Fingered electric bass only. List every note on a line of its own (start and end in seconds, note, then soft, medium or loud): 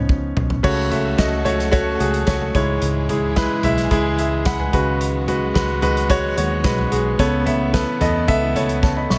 0.00 0.33 C#2 medium
0.37 0.62 B1 medium
0.64 1.15 C#2 medium
1.19 1.96 C#2 medium
2.00 2.26 C#2 medium
2.27 2.53 C#2 medium
2.55 2.80 C#2 medium
2.82 3.47 C#2 medium
3.64 3.90 B1 medium
3.91 4.69 C#2 loud
4.73 5.51 C#2 medium
5.56 6.33 C#2 medium
6.38 6.63 D#2 medium
6.64 6.90 B1 medium
6.92 7.17 B1 medium
7.19 7.84 C#2 medium
8.01 8.26 E2 medium
8.29 9.06 C#2 medium
9.11 9.18 B1 medium